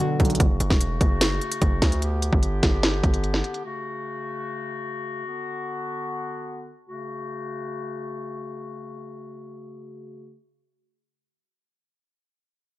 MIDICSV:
0, 0, Header, 1, 6, 480
1, 0, Start_track
1, 0, Tempo, 405405
1, 475, Time_signature, 4, 2, 24, 8
1, 15133, End_track
2, 0, Start_track
2, 0, Title_t, "Nylon-string guitar"
2, 0, Program_c, 0, 24
2, 0, Note_on_c, 0, 66, 83
2, 214, Note_off_c, 0, 66, 0
2, 15133, End_track
3, 0, Start_track
3, 0, Title_t, "Woodwind section"
3, 0, Program_c, 1, 71
3, 474, Note_on_c, 1, 49, 75
3, 475, Note_on_c, 1, 57, 74
3, 475, Note_on_c, 1, 66, 86
3, 2375, Note_off_c, 1, 49, 0
3, 2375, Note_off_c, 1, 57, 0
3, 2375, Note_off_c, 1, 66, 0
3, 2395, Note_on_c, 1, 50, 78
3, 2396, Note_on_c, 1, 59, 74
3, 2396, Note_on_c, 1, 67, 86
3, 4296, Note_off_c, 1, 50, 0
3, 4296, Note_off_c, 1, 59, 0
3, 4296, Note_off_c, 1, 67, 0
3, 4315, Note_on_c, 1, 49, 80
3, 4315, Note_on_c, 1, 57, 72
3, 4315, Note_on_c, 1, 66, 85
3, 6215, Note_off_c, 1, 49, 0
3, 6215, Note_off_c, 1, 57, 0
3, 6234, Note_on_c, 1, 59, 71
3, 6236, Note_on_c, 1, 50, 77
3, 7953, Note_off_c, 1, 50, 0
3, 7953, Note_off_c, 1, 59, 0
3, 7953, Note_off_c, 1, 66, 0
3, 8154, Note_on_c, 1, 57, 72
3, 8155, Note_on_c, 1, 49, 76
3, 8155, Note_on_c, 1, 66, 87
3, 12286, Note_off_c, 1, 57, 0
3, 12286, Note_off_c, 1, 66, 0
3, 12287, Note_off_c, 1, 49, 0
3, 15133, End_track
4, 0, Start_track
4, 0, Title_t, "Synth keys"
4, 0, Program_c, 2, 88
4, 0, Control_c, 2, 64, 127
4, 0, Note_on_c, 2, 47, 78
4, 0, Note_on_c, 2, 50, 84
4, 0, Note_on_c, 2, 54, 83
4, 220, Note_off_c, 2, 54, 0
4, 234, Note_on_c, 2, 54, 85
4, 473, Note_off_c, 2, 47, 0
4, 474, Note_off_c, 2, 50, 0
4, 474, Note_off_c, 2, 54, 0
4, 489, Control_c, 2, 64, 0
4, 15133, End_track
5, 0, Start_track
5, 0, Title_t, "808-style bass"
5, 0, Program_c, 3, 38
5, 234, Note_on_c, 3, 35, 103
5, 465, Note_off_c, 3, 35, 0
5, 474, Note_on_c, 3, 30, 107
5, 704, Note_off_c, 3, 30, 0
5, 714, Note_on_c, 3, 30, 104
5, 829, Note_off_c, 3, 30, 0
5, 834, Note_on_c, 3, 28, 108
5, 1180, Note_off_c, 3, 28, 0
5, 1194, Note_on_c, 3, 30, 102
5, 1655, Note_off_c, 3, 30, 0
5, 1914, Note_on_c, 3, 30, 109
5, 2145, Note_off_c, 3, 30, 0
5, 2155, Note_on_c, 3, 38, 96
5, 2731, Note_off_c, 3, 38, 0
5, 2754, Note_on_c, 3, 31, 108
5, 3100, Note_off_c, 3, 31, 0
5, 3114, Note_on_c, 3, 31, 108
5, 3575, Note_off_c, 3, 31, 0
5, 3594, Note_on_c, 3, 31, 105
5, 4055, Note_off_c, 3, 31, 0
5, 15133, End_track
6, 0, Start_track
6, 0, Title_t, "Drums"
6, 233, Note_on_c, 9, 46, 70
6, 234, Note_on_c, 9, 42, 39
6, 235, Note_on_c, 9, 36, 90
6, 295, Note_off_c, 9, 42, 0
6, 295, Note_on_c, 9, 42, 48
6, 352, Note_off_c, 9, 46, 0
6, 353, Note_off_c, 9, 36, 0
6, 354, Note_off_c, 9, 42, 0
6, 354, Note_on_c, 9, 42, 59
6, 414, Note_off_c, 9, 42, 0
6, 414, Note_on_c, 9, 42, 70
6, 474, Note_off_c, 9, 42, 0
6, 474, Note_on_c, 9, 36, 123
6, 474, Note_on_c, 9, 42, 76
6, 592, Note_off_c, 9, 36, 0
6, 592, Note_off_c, 9, 42, 0
6, 713, Note_on_c, 9, 42, 79
6, 831, Note_off_c, 9, 42, 0
6, 834, Note_on_c, 9, 36, 97
6, 834, Note_on_c, 9, 38, 69
6, 952, Note_off_c, 9, 36, 0
6, 952, Note_off_c, 9, 38, 0
6, 954, Note_on_c, 9, 42, 86
6, 1072, Note_off_c, 9, 42, 0
6, 1193, Note_on_c, 9, 36, 100
6, 1193, Note_on_c, 9, 42, 74
6, 1311, Note_off_c, 9, 42, 0
6, 1312, Note_off_c, 9, 36, 0
6, 1434, Note_on_c, 9, 38, 120
6, 1434, Note_on_c, 9, 42, 73
6, 1552, Note_off_c, 9, 38, 0
6, 1552, Note_off_c, 9, 42, 0
6, 1675, Note_on_c, 9, 42, 50
6, 1793, Note_off_c, 9, 42, 0
6, 1794, Note_on_c, 9, 42, 85
6, 1913, Note_off_c, 9, 42, 0
6, 1913, Note_on_c, 9, 42, 70
6, 1914, Note_on_c, 9, 36, 91
6, 2031, Note_off_c, 9, 42, 0
6, 2032, Note_off_c, 9, 36, 0
6, 2155, Note_on_c, 9, 36, 86
6, 2155, Note_on_c, 9, 38, 86
6, 2155, Note_on_c, 9, 42, 54
6, 2273, Note_off_c, 9, 36, 0
6, 2273, Note_off_c, 9, 38, 0
6, 2273, Note_off_c, 9, 42, 0
6, 2275, Note_on_c, 9, 42, 55
6, 2393, Note_off_c, 9, 42, 0
6, 2394, Note_on_c, 9, 42, 77
6, 2512, Note_off_c, 9, 42, 0
6, 2633, Note_on_c, 9, 42, 82
6, 2751, Note_off_c, 9, 42, 0
6, 2754, Note_on_c, 9, 36, 97
6, 2872, Note_off_c, 9, 36, 0
6, 2873, Note_on_c, 9, 42, 86
6, 2992, Note_off_c, 9, 42, 0
6, 3113, Note_on_c, 9, 42, 73
6, 3114, Note_on_c, 9, 36, 101
6, 3114, Note_on_c, 9, 38, 88
6, 3231, Note_off_c, 9, 42, 0
6, 3232, Note_off_c, 9, 36, 0
6, 3232, Note_off_c, 9, 38, 0
6, 3354, Note_on_c, 9, 38, 118
6, 3354, Note_on_c, 9, 42, 72
6, 3473, Note_off_c, 9, 38, 0
6, 3473, Note_off_c, 9, 42, 0
6, 3594, Note_on_c, 9, 36, 92
6, 3594, Note_on_c, 9, 42, 49
6, 3712, Note_off_c, 9, 36, 0
6, 3713, Note_off_c, 9, 42, 0
6, 3714, Note_on_c, 9, 42, 80
6, 3832, Note_off_c, 9, 42, 0
6, 3832, Note_on_c, 9, 42, 71
6, 3951, Note_off_c, 9, 42, 0
6, 3954, Note_on_c, 9, 38, 64
6, 4072, Note_off_c, 9, 38, 0
6, 4075, Note_on_c, 9, 42, 55
6, 4193, Note_off_c, 9, 42, 0
6, 4194, Note_on_c, 9, 42, 55
6, 4313, Note_off_c, 9, 42, 0
6, 15133, End_track
0, 0, End_of_file